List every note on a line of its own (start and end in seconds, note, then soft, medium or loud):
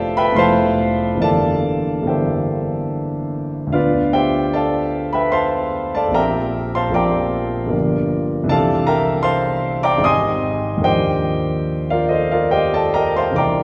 0.00 0.30 F1 medium
0.00 0.32 F3 soft
0.00 0.33 A3 soft
0.00 0.34 E4 soft
0.00 1.25 F4 medium
0.00 1.22 G4 medium
0.00 0.38 A4 medium
0.00 0.18 B4 medium
0.00 0.38 C5 medium
0.00 1.22 D5 medium
0.00 0.18 E5 medium
0.00 0.39 F5 medium
0.00 0.18 G5 medium
0.00 0.17 A5 medium
0.17 0.37 B4 medium
0.17 0.37 E5 medium
0.17 0.37 G5 medium
0.17 0.38 B5 loud
0.31 1.16 F1 medium
0.31 1.17 F3 soft
0.31 1.18 A3 soft
0.36 1.19 E4 soft
0.36 1.20 A4 soft
0.36 1.18 C5 medium
0.36 1.19 F5 medium
0.36 1.19 A5 medium
0.36 1.21 C6 medium
1.15 2.01 G1 soft
1.15 2.02 E3 soft
1.19 2.03 A#3 soft
1.19 2.04 D4 soft
1.19 2.05 G4 soft
1.19 2.04 A4 medium
1.19 2.04 D5 medium
1.19 2.04 F5 medium
1.19 2.07 A5 medium
2.02 3.69 G1 soft
2.02 3.70 E3 soft
2.02 3.71 A#3 soft
2.06 3.71 D4 soft
2.06 3.30 G4 soft
2.06 3.30 C5 soft
2.06 3.30 E5 soft
2.06 3.33 G5 soft
3.67 6.08 D2 soft
3.67 6.09 D3 soft
3.67 6.10 B3 soft
3.72 6.11 D4 soft
3.72 4.13 F4 medium
3.72 4.13 B4 medium
3.72 4.13 D5 medium
3.72 4.15 F5 medium
4.13 4.53 G4 medium
4.13 4.53 C5 medium
4.13 4.53 E5 medium
4.13 4.55 G5 medium
4.54 5.10 A4 medium
4.54 5.10 D5 medium
4.54 5.11 F5 medium
4.54 5.14 A5 medium
5.13 5.34 B4 medium
5.13 5.33 E5 medium
5.13 5.33 G5 medium
5.13 5.34 B5 medium
5.32 5.91 C5 medium
5.32 5.92 F5 medium
5.32 5.92 A5 medium
5.32 5.95 C6 medium
5.95 6.15 A4 medium
5.95 6.15 D5 medium
5.95 6.15 F5 medium
5.95 6.16 A5 medium
6.08 6.87 A#1 soft
6.08 6.89 F3 soft
6.08 6.90 A#3 soft
6.14 6.92 C4 soft
6.14 6.92 G4 soft
6.14 6.71 A#4 medium
6.14 6.71 E5 medium
6.14 6.71 G5 medium
6.14 6.75 A#5 medium
6.75 6.94 C5 medium
6.75 6.94 F5 medium
6.75 6.95 A5 medium
6.75 6.95 C6 medium
6.88 7.67 A#1 soft
6.88 7.67 F3 soft
6.88 7.69 A#3 soft
6.93 7.70 C4 soft
6.93 7.71 G4 soft
6.93 8.08 D5 medium
6.93 8.08 G5 medium
6.93 8.08 A#5 medium
6.93 8.11 D6 medium
7.67 8.44 G1 medium
7.67 8.45 F3 soft
7.67 8.46 A#3 soft
7.71 8.46 D4 soft
7.71 8.47 G4 soft
8.44 9.98 C2 medium
8.44 9.99 E3 soft
8.48 10.00 C4 soft
8.48 10.01 D4 soft
8.48 10.02 G4 soft
8.48 8.85 A4 medium
8.48 8.85 D5 medium
8.48 8.85 F5 medium
8.48 8.87 A5 loud
8.87 9.23 A#4 medium
8.87 9.23 E5 medium
8.87 9.23 G5 medium
8.87 9.25 A#5 medium
9.23 9.80 C5 medium
9.23 9.80 F5 medium
9.23 9.80 A5 medium
9.23 9.84 C6 medium
9.83 10.03 D5 medium
9.83 10.04 G5 medium
9.83 10.03 A#5 medium
9.83 10.04 D6 medium
9.98 10.81 G#1 medium
9.98 10.82 D#3 soft
9.98 10.82 C4 soft
10.03 10.83 D#4 soft
10.03 10.83 G4 soft
10.03 10.83 D#5 medium
10.03 10.83 G#5 medium
10.03 10.83 C6 medium
10.03 10.86 D#6 medium
10.77 13.30 D#2 soft
10.77 13.31 F3 soft
10.77 13.32 A#3 soft
10.83 13.33 D4 soft
10.83 11.88 G4 medium
10.83 11.88 C5 medium
10.83 11.88 D#5 medium
10.83 11.92 G5 medium
11.90 12.12 F4 medium
11.90 12.12 A#4 medium
11.90 12.12 D5 medium
11.90 12.13 F5 medium
12.09 12.31 A4 medium
12.09 12.32 C5 soft
12.09 12.32 D#5 medium
12.31 12.53 F4 medium
12.31 12.53 A#4 medium
12.31 12.53 D5 medium
12.31 12.54 F5 medium
12.51 12.73 G4 medium
12.51 12.73 C5 medium
12.51 12.73 D#5 medium
12.51 12.74 G5 medium
12.74 12.95 A4 medium
12.74 12.95 D5 medium
12.74 12.95 F5 medium
12.74 12.96 A5 medium
12.94 13.16 A#4 medium
12.94 13.16 D#5 medium
12.94 13.16 G5 medium
12.94 13.16 A#5 medium
13.16 13.37 C5 medium
13.16 13.37 F5 medium
13.16 13.37 A5 medium
13.16 13.38 C6 medium
13.31 13.63 C2 soft
13.31 13.63 E3 soft
13.31 13.63 A#3 soft
13.35 13.63 D4 soft
13.35 13.63 G4 soft
13.35 13.63 D5 medium
13.35 13.63 G5 medium
13.35 13.63 A#5 medium
13.35 13.63 D6 medium